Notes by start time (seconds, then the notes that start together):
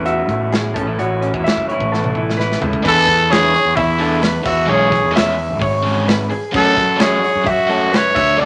Already playing: E2 A2 E3 C#4 E4
0.05 F#4 E5, closed hi-hat
0.29 E2 A2, kick, closed hi-hat
0.52 E4 G#4, snare, closed hi-hat
0.74 A1 A2 C#4 A4, kick, closed hi-hat
0.87 E4
0.99 A1 F#4 C#5, closed hi-hat
1.22 C#4, closed hi-hat
1.34 E2 E4, kick
1.44 E3 E5, snare, closed hi-hat
1.57 F#1, kick
1.69 E4 C#5, closed hi-hat
1.80 A1, kick
1.92 E2 A4, snare
2.04 high tom
2.15 A1 E4, kick
2.30 snare
2.38 E4 B4, snare
2.52 snare
2.60 C#2 A2 E4 A4, floor tom
2.73 kick
2.83 E2 E3 B3 D4 G#4 B4, kick, crash
2.88 A4
3.07 muted overdriven electric guitar stroke, kick, open hi-hat
3.30 E3 B3 D4 G#4 C#5, snare, open hi-hat
3.54 C#5, muted overdriven electric guitar stroke, open hi-hat
3.65 E2
3.76 E2 E4 E5, muted overdriven electric guitar stroke, kick, open hi-hat
3.99 E3 B3 D4 G#4 A4, open hi-hat
4.21 B4, muted overdriven electric guitar stroke, snare, open hi-hat
4.44 E2 F#4 E5, muted overdriven electric guitar stroke, kick, crash
4.66 B1 E3 G#3 C#4 G#4 C#5
4.91 muted overdriven electric guitar stroke, kick, snare, open hi-hat
5.03 E2
5.11 E3 G#3 C#4 G#4
5.16 E5, snare, open hi-hat
5.36 muted overdriven electric guitar stroke, open hi-hat
5.50 G#1
5.60 C#5, muted overdriven electric guitar stroke, kick, open hi-hat
5.83 E3 G#3 C#4 G#4, open hi-hat
6.07 B4, muted overdriven electric guitar stroke, snare, open hi-hat
6.30 G#4, muted overdriven electric guitar stroke, open hi-hat
6.52 F#2 F#3 A3 C#4 F#4 B4, kick, crash
6.56 A4
6.75 muted overdriven electric guitar stroke, kick, snare, open hi-hat
6.96 F#3 A3 C#4 F#4, snare, open hi-hat
7.01 G#4 C#5
7.20 muted overdriven electric guitar stroke
7.24 C#5, open hi-hat
7.35 F#2
7.44 F#2 E5, muted overdriven electric guitar stroke, kick, open hi-hat
7.49 F#4
7.67 F#3 A3 C#4 F#4 A4, open hi-hat
7.91 B4, muted overdriven electric guitar stroke, snare, open hi-hat
7.97 C#5
8.15 D2 E5, muted overdriven electric guitar stroke, kick, crash
8.37 C#2 F#3 A3 D4 F#4 D5
8.42 A4